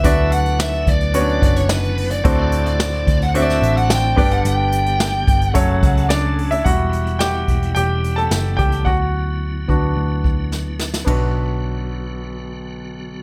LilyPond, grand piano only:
\new Staff \with { instrumentName = "Grand piano" } { \time 4/4 \key b \minor \tempo 4 = 109 << { r1 | r1 | r2. <d' d''>8. <e' e''>16 | <fis' fis''>4 <g' g''>4 <g' g''>8. <a' a''>8. <g' g''>8 |
<fis' fis''>2. r4 | r1 | } \\ { <d b d' fis' b' d''>4. r8 <b cis' d' fis' b' cis''>4. r8 | <a, c' d' fis' a' c''>4. r8 <c' d' fis' a' c'' d''>4. <g, d b d' g' b' d''>8~ | <g, d b d' g' b' d''>4 r4 <cis fis a a' cis''>4. r8 | <g e'>4. r2 r8 |
r4. <b d' fis'>2~ <b d' fis'>8 | <b,, b d' fis' b'>1 | } >> }